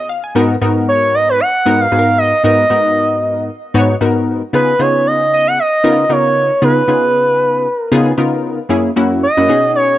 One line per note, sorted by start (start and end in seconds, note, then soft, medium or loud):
0.09 0.23 F5 medium
0.24 0.49 G#5 medium
0.35 0.56 G#2 medium
0.35 0.56 B3 loud
0.35 0.56 D#4 medium
0.35 0.56 F#4 medium
0.35 0.56 A#4 loud
0.61 1.41 G#2 medium
0.61 1.41 B3 medium
0.61 1.41 D#4 medium
0.61 1.41 F#4 medium
0.61 1.41 A#4 medium
0.89 1.16 C#5 loud
1.15 1.29 D#5 loud
1.29 1.42 B4 loud
1.40 1.82 F#5 loud
1.66 1.86 G#2 medium
1.66 1.87 B3 medium
1.66 1.87 D#4 medium
1.66 1.87 F#4 medium
1.66 1.87 A#4 loud
1.80 2.17 F5 loud
1.91 2.33 G#2 medium
1.91 2.33 B3 medium
1.91 2.33 D#4 medium
1.91 2.33 F#4 medium
1.91 1.99 G#4 medium
1.99 2.37 A#4 medium
2.18 2.42 D#5 loud
2.44 2.65 G#2 medium
2.44 2.65 B3 medium
2.44 2.65 D#4 medium
2.44 2.65 F#4 medium
2.44 2.65 A#4 loud
2.44 3.45 D#5 loud
2.70 3.50 G#2 medium
2.70 3.50 B3 medium
2.70 3.50 D#4 medium
2.70 3.50 F#4 medium
2.70 3.50 A#4 medium
3.74 3.95 G#2 loud
3.74 3.95 B3 medium
3.74 3.95 D#4 loud
3.74 3.95 F#4 loud
3.74 3.96 C#5 loud
4.01 4.42 G#2 medium
4.01 4.42 B3 medium
4.01 4.42 D#4 medium
4.01 4.42 F#4 medium
4.01 4.42 A#4 medium
4.53 4.74 C#3 medium
4.53 4.74 B3 medium
4.53 4.74 D#4 medium
4.53 4.74 F4 medium
4.53 4.74 G#4 medium
4.53 4.82 B4 loud
4.79 5.59 C#3 medium
4.79 5.59 B3 medium
4.79 5.59 D#4 medium
4.79 5.59 F4 medium
4.79 5.59 G#4 medium
4.79 5.08 C#5 medium
5.07 5.32 D#5 medium
5.33 5.49 D#5 loud
5.47 5.58 F#5 loud
5.59 6.04 D#5 medium
5.84 6.04 C#3 medium
5.84 6.04 B3 medium
5.84 6.04 D#4 medium
5.84 6.05 F4 medium
5.84 6.05 A#4 loud
6.04 6.13 D#5 medium
6.09 6.51 C#3 medium
6.09 6.51 B3 medium
6.09 6.51 D#4 medium
6.09 6.51 F4 medium
6.09 6.51 A#4 medium
6.09 6.63 C#5 loud
6.62 6.82 C#3 medium
6.62 6.82 B3 medium
6.62 6.83 D#4 medium
6.62 6.83 F4 medium
6.62 6.83 G#4 medium
6.62 7.77 B4 loud
6.88 7.67 C#3 medium
6.88 7.67 B3 medium
6.88 7.67 D#4 medium
6.88 7.68 F4 medium
6.88 7.68 G#4 medium
7.77 8.42 A#4 loud
7.92 8.13 C#3 loud
7.92 8.13 B3 loud
7.92 8.13 D#4 medium
7.92 8.13 F4 medium
7.92 8.13 G#4 loud
8.18 8.59 C#3 medium
8.18 8.59 B3 medium
8.18 8.59 D#4 medium
8.18 8.59 F4 medium
8.18 8.60 A#4 medium
8.69 8.90 F#2 medium
8.69 8.91 A#3 medium
8.69 8.91 C#4 medium
8.69 8.91 E4 medium
8.69 8.91 G#4 medium
8.96 9.27 F#2 medium
8.96 9.27 A#3 medium
8.96 9.27 C#4 medium
8.96 9.27 E4 medium
8.96 9.27 F#4 loud
9.23 9.71 D#5 loud
9.37 9.49 F#2 medium
9.37 9.49 A#3 medium
9.37 9.48 C#4 medium
9.37 9.49 E4 medium
9.37 9.48 F#4 medium
9.49 9.98 B2 medium
9.49 9.98 C#4 medium
9.49 9.98 D#4 medium
9.49 9.98 F#4 medium
9.49 9.98 G#4 medium
9.75 9.98 C#5 loud